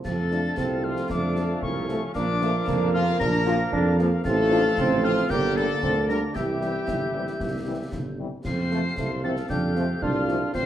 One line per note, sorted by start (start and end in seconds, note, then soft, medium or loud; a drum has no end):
0.05 0.49 F2 medium
0.05 2.11 F3 medium
0.05 2.11 A3 medium
0.05 0.17 C4 medium
0.05 0.80 A4 loud
0.05 2.11 A4 medium
0.05 2.11 F5 medium
0.05 0.85 A6 loud
0.05 concert bass drum medium
0.05 snare medium
0.05 crash medium
0.31 0.41 F3 medium
0.31 0.41 A3 medium
0.31 0.56 D4 medium
0.31 snare soft
0.57 1.02 C2 medium
0.57 1.12 C4 loud
0.57 concert bass drum medium
0.57 snare loud
0.84 0.94 F3 medium
0.84 0.94 A3 medium
0.84 1.11 F4 loud
0.84 1.10 F6 medium
0.97 snare medium
1.10 1.54 F2 medium
1.10 1.65 A3 medium
1.10 1.63 D4 loud
1.10 1.59 D6 loud
1.10 concert bass drum medium
1.10 snare medium
1.36 1.46 F3 medium
1.36 1.46 A3 medium
1.36 snare medium
1.62 2.02 C2 medium
1.62 1.89 A#3 loud
1.62 2.15 C#4 medium
1.62 2.12 C#6 medium
1.62 concert bass drum medium
1.89 1.99 F3 medium
1.89 2.01 A3 medium
1.89 1.99 A3 medium
1.89 snare medium
2.14 2.59 A#1 loud
2.14 4.21 F3 loud
2.14 4.25 A#3 loud
2.14 2.28 A#3 loud
2.14 2.90 D4 loud
2.14 4.21 A#4 loud
2.14 4.21 F5 loud
2.14 2.90 D6 loud
2.14 concert bass drum medium
2.14 snare medium
2.14 crash soft
2.42 2.51 F3 medium
2.42 2.54 A3 loud
2.42 2.51 A#3 medium
2.42 snare medium
2.67 3.11 F2 medium
2.67 3.22 A#3 loud
2.67 concert bass drum loud
2.67 snare loud
2.94 3.04 F3 medium
2.94 3.03 A#3 loud
2.94 3.20 F4 loud
2.94 3.00 F6 loud
3.07 snare medium
3.20 3.64 A#1 loud
3.20 3.46 D4 loud
3.20 3.95 A#4 loud
3.20 3.95 A#6 loud
3.20 concert bass drum medium
3.20 snare medium
3.46 3.56 F3 loud
3.46 3.56 A#3 loud
3.46 3.58 F4 loud
3.46 snare medium
3.72 4.16 F2 loud
3.72 3.97 D4 loud
3.72 concert bass drum medium
3.99 4.09 F3 loud
3.99 4.11 A#3 loud
3.99 4.09 A#3 medium
3.99 snare medium
4.25 4.69 A1 loud
4.25 5.26 F3 loud
4.25 5.26 A3 loud
4.25 4.38 C4 loud
4.25 5.00 A4 loud
4.25 5.30 A4 loud
4.25 5.26 F5 loud
4.25 5.06 A6 loud
4.25 concert bass drum medium
4.25 snare medium
4.25 crash soft
4.51 4.61 F3 loud
4.51 4.61 C4 loud
4.51 4.64 D4 loud
4.51 snare medium
4.78 5.21 A1 loud
4.78 5.27 C4 loud
4.78 concert bass drum loud
4.78 snare medium
5.04 5.13 F3 medium
5.04 5.13 C4 medium
5.04 5.28 F4 loud
5.04 5.32 F6 loud
5.17 snare medium
5.29 5.74 G1 loud
5.29 6.35 D3 loud
5.29 5.79 A#3 loud
5.29 6.31 A#3 medium
5.29 5.56 G4 loud
5.29 6.31 A#4 loud
5.29 6.35 D5 loud
5.29 5.58 G6 loud
5.29 concert bass drum loud
5.29 snare medium
5.56 5.66 D3 medium
5.56 5.66 G3 medium
5.56 5.66 A#3 medium
5.56 6.09 A4 loud
5.56 6.08 A6 loud
5.56 snare medium
5.82 6.26 D2 loud
5.82 5.95 C4 loud
5.82 concert bass drum medium
6.08 6.18 D3 medium
6.08 6.18 G3 medium
6.08 6.18 A#3 medium
6.08 6.33 D4 medium
6.08 6.20 A#4 loud
6.08 6.37 A#6 medium
6.08 snare medium
6.34 6.79 C2 medium
6.34 8.15 E3 medium
6.34 8.19 G3 medium
6.34 8.15 E4 loud
6.34 8.14 G4 loud
6.34 8.19 G4 medium
6.34 8.19 E5 medium
6.34 8.19 G6 medium
6.34 concert bass drum medium
6.34 snare medium
6.34 crash soft
6.61 6.71 E3 medium
6.61 6.71 G3 medium
6.61 6.71 C4 medium
6.61 snare medium
6.87 7.31 G1 medium
6.87 concert bass drum medium
6.87 snare loud
7.14 7.23 E3 medium
7.14 7.23 G3 medium
7.14 7.23 C4 medium
7.27 snare medium
7.40 7.84 C2 medium
7.40 concert bass drum medium
7.40 snare medium
7.67 7.76 E3 medium
7.67 7.76 G3 medium
7.67 7.76 C4 medium
7.92 8.32 G1 medium
7.92 concert bass drum medium
7.92 snare medium
8.19 8.28 E3 medium
8.19 8.28 G3 medium
8.19 8.28 C4 medium
8.45 8.89 F2 medium
8.45 8.94 C4 medium
8.45 10.51 A4 medium
8.45 9.20 C5 loud
8.45 10.51 F5 medium
8.45 9.20 C7 loud
8.45 concert bass drum medium
8.45 snare medium
8.45 crash medium
8.70 8.80 F3 medium
8.70 8.81 F3 medium
8.70 8.80 A3 medium
8.70 8.81 A3 medium
8.70 8.81 C4 medium
8.70 snare medium
8.97 9.41 C2 medium
8.97 9.09 A3 loud
8.97 concert bass drum medium
8.97 snare loud
9.22 9.32 F3 medium
9.22 9.33 F3 medium
9.22 9.32 A3 medium
9.22 9.33 A3 medium
9.22 9.33 C4 medium
9.22 9.36 C4 medium
9.22 9.48 A4 loud
9.22 9.30 A6 medium
9.37 snare medium
9.49 9.94 F2 loud
9.49 9.74 D4 medium
9.49 9.98 G4 medium
9.49 10.04 G6 medium
9.49 concert bass drum medium
9.49 snare medium
9.76 9.85 F3 medium
9.76 9.86 F3 medium
9.76 9.85 A3 medium
9.76 9.86 A3 medium
9.76 9.88 C4 medium
9.76 9.86 C4 medium
9.76 snare medium
10.02 10.46 C2 medium
10.02 10.51 D4 loud
10.02 10.51 F4 loud
10.02 10.54 F6 loud
10.02 concert bass drum medium
10.28 10.38 F3 medium
10.28 10.37 A3 medium
10.28 10.38 A3 medium
10.28 10.38 C4 medium
10.28 snare medium
10.54 10.66 A1 medium
10.54 10.66 C4 medium
10.54 10.66 F4 medium
10.54 10.66 C5 loud
10.54 10.66 F5 medium
10.54 10.66 C7 loud
10.54 concert bass drum medium
10.54 snare medium
10.54 crash soft